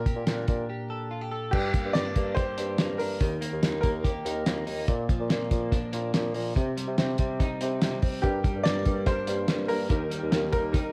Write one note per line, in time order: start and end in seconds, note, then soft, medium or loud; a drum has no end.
0.00 1.52 A#2 medium
0.00 0.27 D4 medium
0.00 1.06 A#4 medium
0.06 0.69 G4 soft
0.06 kick medium
0.06 closed hi-hat medium
0.16 0.25 A#2 medium
0.27 0.44 A#2 medium
0.27 1.57 D4 soft
0.27 snare loud
0.27 closed hi-hat medium
0.48 0.66 A#2 medium
0.48 kick medium
0.48 closed hi-hat medium
0.70 1.11 G4 medium
0.90 1.30 A4 medium
1.11 1.21 F4 medium
1.21 1.57 G4 soft
1.32 1.57 A4 medium
1.51 3.21 G2 medium
1.51 1.70 G2 medium
1.51 1.96 G4 medium
1.51 kick medium
1.51 crash medium
1.73 2.14 A#3 medium
1.73 kick medium
1.73 closed hi-hat medium
1.85 1.94 G2 medium
1.93 2.13 G2 medium
1.93 2.05 C4 medium
1.93 2.38 D5 medium
1.93 snare loud
1.93 closed hi-hat medium
2.05 2.56 D4 soft
2.15 2.42 G2 loud
2.15 2.78 A#3 medium
2.15 kick medium
2.15 closed hi-hat medium
2.35 3.25 G4 medium
2.35 2.95 C5 medium
2.35 kick medium
2.35 closed hi-hat medium
2.57 2.75 G2 medium
2.57 2.98 D4 medium
2.57 closed hi-hat medium
2.78 2.97 G2 loud
2.78 3.41 A#3 medium
2.78 snare loud
2.78 closed hi-hat medium
2.98 3.17 G2 medium
2.98 3.25 D4 medium
2.98 3.79 A#4 medium
2.98 open hi-hat medium
3.21 3.38 D#2 medium
3.21 4.88 D#3 medium
3.21 kick medium
3.21 closed hi-hat medium
3.41 3.83 A#3 medium
3.41 closed hi-hat medium
3.52 3.61 D#2 medium
3.62 3.80 D#2 medium
3.62 4.24 D#4 medium
3.62 snare loud
3.62 closed hi-hat medium
3.81 4.09 D#2 medium
3.81 4.46 A#3 medium
3.81 4.62 A#4 medium
3.81 kick medium
3.81 closed hi-hat medium
4.04 4.92 G4 medium
4.04 kick medium
4.04 closed hi-hat medium
4.25 4.42 D#2 medium
4.25 4.66 D#4 medium
4.25 closed hi-hat medium
4.46 4.64 D#2 medium
4.46 4.93 A#3 medium
4.46 snare loud
4.46 closed hi-hat loud
4.67 4.84 D#2 medium
4.67 4.92 D#4 medium
4.67 open hi-hat medium
4.88 6.56 A#2 medium
4.88 5.06 A#2 medium
4.88 kick medium
4.88 closed hi-hat medium
5.09 5.49 F3 medium
5.09 kick medium
5.09 closed hi-hat medium
5.20 5.29 A#2 medium
5.29 5.48 A#2 loud
5.29 5.91 A#3 medium
5.29 snare loud
5.29 closed hi-hat medium
5.51 5.77 A#2 medium
5.51 6.12 F3 medium
5.51 kick medium
5.51 closed hi-hat medium
5.72 6.60 D4 medium
5.72 kick medium
5.72 snare soft
5.72 closed hi-hat medium
5.93 6.10 A#2 medium
5.93 6.33 A#3 medium
5.93 closed hi-hat medium
6.14 6.31 A#2 medium
6.14 6.60 F3 medium
6.14 snare loud
6.14 closed hi-hat medium
6.34 6.52 A#2 medium
6.34 6.60 A#3 medium
6.34 open hi-hat medium
6.56 8.23 C3 medium
6.56 6.73 C3 medium
6.56 kick medium
6.56 closed hi-hat medium
6.77 7.19 G3 medium
6.77 closed hi-hat medium
6.87 6.96 C3 medium
6.98 7.15 C3 loud
6.98 7.60 C4 medium
6.98 snare loud
6.98 closed hi-hat medium
7.18 7.45 C3 medium
7.18 7.81 G3 medium
7.18 kick medium
7.18 closed hi-hat medium
7.40 8.27 D#4 medium
7.40 kick medium
7.40 snare soft
7.40 closed hi-hat medium
7.61 7.78 C3 medium
7.61 8.01 C4 medium
7.61 closed hi-hat medium
7.81 7.99 C3 medium
7.81 8.43 G3 medium
7.81 snare loud
7.81 closed hi-hat medium
8.02 8.27 C4 medium
8.02 kick medium
8.02 open hi-hat medium
8.22 9.90 G2 medium
8.22 8.41 G2 medium
8.22 8.42 D4 medium
8.22 8.66 G4 medium
8.22 8.42 G4 medium
8.22 8.42 A#4 loud
8.22 kick medium
8.22 closed hi-hat medium
8.44 8.85 G3 medium
8.44 8.62 D4 medium
8.44 8.62 G4 medium
8.44 8.63 A#4 medium
8.44 kick medium
8.44 closed hi-hat medium
8.55 8.64 G2 medium
8.63 8.83 G2 loud
8.63 9.27 A#3 medium
8.63 8.83 D4 medium
8.63 8.83 G4 medium
8.63 8.83 A#4 medium
8.63 9.07 D5 medium
8.63 snare loud
8.63 closed hi-hat medium
8.85 9.12 G2 loud
8.85 9.48 G3 medium
8.85 9.04 D4 medium
8.85 9.04 G4 medium
8.85 9.04 A#4 medium
8.85 kick medium
8.85 closed hi-hat medium
9.06 9.94 D4 medium
9.06 9.25 D4 medium
9.06 9.25 G4 medium
9.06 9.25 A#4 loud
9.06 9.71 C5 medium
9.06 kick medium
9.06 snare soft
9.06 closed hi-hat medium
9.27 9.45 G2 loud
9.27 9.69 A#3 medium
9.27 9.46 D4 medium
9.27 9.46 G4 medium
9.27 9.46 A#4 medium
9.27 closed hi-hat medium
9.48 9.66 G2 medium
9.48 9.95 G3 medium
9.48 9.67 D4 medium
9.48 9.67 G4 medium
9.48 9.67 A#4 medium
9.48 snare loud
9.48 closed hi-hat medium
9.68 9.86 G2 medium
9.68 10.31 A#3 medium
9.68 9.88 D4 medium
9.68 9.88 G4 medium
9.68 10.48 A#4 medium
9.68 9.88 A#4 medium
9.68 open hi-hat medium
9.89 10.07 D#2 loud
9.89 10.92 D#3 medium
9.89 10.09 D#4 medium
9.89 10.09 G4 medium
9.89 10.09 A#4 loud
9.89 kick medium
9.89 closed hi-hat medium
10.10 10.51 G3 medium
10.10 10.29 D#4 medium
10.10 10.30 G4 medium
10.10 10.30 A#4 medium
10.10 closed hi-hat medium
10.23 10.31 D#2 medium
10.31 10.49 D#2 loud
10.31 10.92 A#3 medium
10.31 10.50 D#4 medium
10.31 10.51 G4 medium
10.31 10.51 A#4 medium
10.31 snare loud
10.31 closed hi-hat medium
10.51 10.79 D#2 medium
10.51 10.92 G3 medium
10.51 10.71 D#4 medium
10.51 10.71 G4 medium
10.51 10.71 A#4 medium
10.51 10.92 A#4 medium
10.51 kick medium
10.51 closed hi-hat medium
10.72 10.92 D#4 medium
10.72 10.92 G4 medium
10.72 10.92 A#4 loud
10.72 kick loud
10.72 snare soft
10.72 closed hi-hat medium